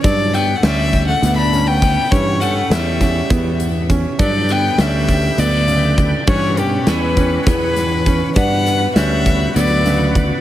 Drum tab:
HH |xxxxxxx|xxxxxxx|xxxxxxx|xxxxxxx|
SD |--o-ooo|--oo---|-oo----|--o--o-|
BD |o--o--o|o--oo-o|o--o--o|o--oo-o|

HH |xxxxxxx|
SD |-ooooo-|
BD |o--o--o|